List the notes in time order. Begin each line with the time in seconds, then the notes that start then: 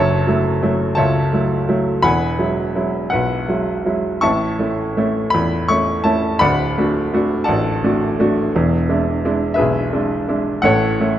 Already playing: F#1 F#2 C#5 E5 A5
0.27 F#3 A3 E4
0.62 F#3 A3 E4
0.95 C#2 C#5 E5 A5
1.33 F#3 A3 E4
1.69 F#3 A3 E4
2.02 E1 E2 F#5 G#5 B5
2.39 F#3 G#3 E4
2.75 F#3 G#3 E4
3.10 B1 B4 F#5
3.48 F#3 G#3 E4
3.86 F#3 G#3 E4
4.21 A1 A2 E5 A5 C#6
4.59 A3 C#4 E4
4.97 A3 C#4 E4
5.30 E2 B5
5.68 A3 C#4 E4 C#6
6.04 A3 C#4 E4 A5
6.39 D1 D2 D5 F#5 B5
6.78 A3 D4 F#4
7.13 A3 D4 F#4
7.44 D5 F#5 A5
7.48 A1
7.84 A3 D4 F#4
8.19 A3 D4 F#4
8.55 E1 E2
8.89 G#3 D4 E4
9.25 G#3 D4 E4
9.54 G#4 B4 E5
9.59 B1
9.93 G#3 D4 E4
10.29 G#3 D4 E4
10.62 A1 A2 A4 C#5 F#5
11.00 A3 C#4 E4